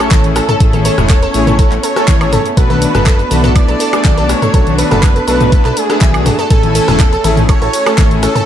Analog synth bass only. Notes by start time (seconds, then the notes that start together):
0.11 A1
0.60 A1
0.98 E1
1.34 A1
1.72 A1
2.08 A1
2.57 B1
2.95 F#1
3.31 B1
3.69 B1
4.05 B1
4.54 B1
4.91 F#1
5.28 B1
5.65 B1
6.01 B1
6.51 A1
6.88 E1
7.24 A1
7.62 A1
7.98 A1